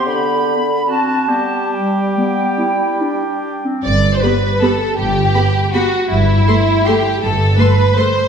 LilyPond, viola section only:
\new Staff \with { instrumentName = "Viola section" } { \time 3/4 \key g \major \tempo 4 = 155 r2. | r2. | r2. | r4 <b g'>4 <b g'>4 |
r4 <b g'>4 <b g'>4 | r4 <a a'>4 <a a'>4 | r4 <a a'>4 <a a'>4 | }